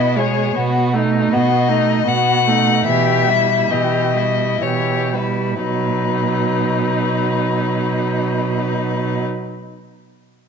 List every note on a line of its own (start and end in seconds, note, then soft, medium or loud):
0.00 0.46 B2 soft
0.00 0.18 B3 soft
0.00 0.21 E4 soft
0.00 0.19 D#5 medium
0.16 0.55 G#3 soft
0.16 0.56 G#4 soft
0.16 0.55 C#5 soft
0.56 1.22 B2 soft
0.56 0.95 B3 soft
0.56 0.97 F#4 soft
0.93 1.34 A3 soft
0.93 1.34 D#4 soft
1.31 1.97 B2 soft
1.31 1.70 B3 soft
1.31 1.70 F#4 soft
1.31 2.10 D#5 medium
1.68 2.05 A3 soft
1.68 2.06 D#4 soft
2.06 2.77 B2 soft
2.06 2.48 B3 soft
2.06 2.50 F#4 soft
2.06 2.86 F#5 medium
2.47 2.85 A3 soft
2.47 2.88 D#4 soft
2.86 3.60 B2 soft
2.86 3.29 E3 soft
2.86 3.31 G4 soft
2.86 3.72 E5 medium
3.28 3.72 G3 soft
3.28 3.73 E4 soft
3.70 4.51 B2 soft
3.70 4.16 E3 soft
3.70 4.18 G4 soft
3.70 4.63 D#5 soft
4.15 4.61 G3 soft
4.15 4.62 E4 soft
4.62 5.51 B2 soft
4.62 5.15 E3 soft
4.62 5.17 G4 soft
4.62 5.15 C#5 soft
5.13 5.63 G3 soft
5.13 5.64 E4 soft
5.13 5.62 B4 soft
5.62 9.21 B2 soft
5.62 9.22 F#3 soft
5.62 9.23 D#4 soft
5.62 9.22 B4 soft